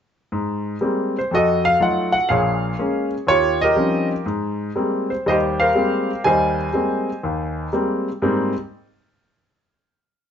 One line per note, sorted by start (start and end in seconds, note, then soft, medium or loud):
0.32 0.75 G#2 medium
0.81 1.15 G3 medium
0.81 1.16 G#3 soft
0.81 1.16 A#3 soft
0.81 1.16 C4 medium
1.18 1.33 C5 medium
1.31 1.73 F2 medium
1.31 2.27 F#4 medium
1.31 2.26 A4 medium
1.31 1.63 D#5 medium
1.65 1.79 F5 medium
1.80 2.15 F#3 soft
1.80 2.14 A3 soft
1.80 2.14 D#4 soft
1.80 2.15 F4 medium
1.80 2.11 F#5 medium
2.12 2.28 F#5 medium
2.29 2.73 A#1 medium
2.29 2.72 A#2 medium
2.29 3.24 G#4 medium
2.29 3.25 C#5 medium
2.29 3.07 F5 medium
2.79 3.13 G#3 soft
2.79 3.13 A#3 soft
2.79 3.13 C#4 medium
3.27 3.70 D#2 medium
3.27 4.23 F4 medium
3.27 3.62 G4 medium
3.27 3.62 C#5 loud
3.61 4.24 G4 medium
3.61 4.24 A#4 medium
3.61 4.07 D#5 medium
3.76 4.11 F3 soft
3.76 4.11 G3 soft
3.76 4.11 C4 soft
3.76 4.11 C#4 soft
3.76 4.11 D#4 medium
4.26 4.69 G#2 medium
4.76 5.10 G3 soft
4.76 5.11 G#3 soft
4.76 5.11 A#3 soft
4.76 5.11 C4 medium
5.10 5.26 C5 medium
5.26 5.69 D#2 medium
5.26 5.69 G3 medium
5.26 6.22 G4 medium
5.26 5.59 C5 medium
5.26 5.35 D#5 medium
5.60 6.55 A#4 medium
5.60 6.25 C5 medium
5.60 6.21 F5 medium
5.75 6.10 G3 soft
5.75 6.10 G#3 soft
5.75 6.10 A#3 soft
5.75 6.10 C4 medium
6.24 6.68 D#2 medium
6.24 6.68 G3 medium
6.24 7.70 C5 medium
6.24 7.70 D#5 medium
6.24 7.69 G#5 medium
6.73 7.08 G3 soft
6.73 7.09 G#3 soft
6.73 7.09 A#3 soft
6.73 7.09 C4 medium
7.23 7.66 D#2 medium
7.73 8.07 G3 medium
7.73 8.07 G#3 soft
7.73 8.08 A#3 soft
7.73 8.08 C4 medium
8.22 8.52 G#2 medium
8.22 8.52 G3 medium
8.22 8.52 A#3 medium
8.22 8.52 C4 medium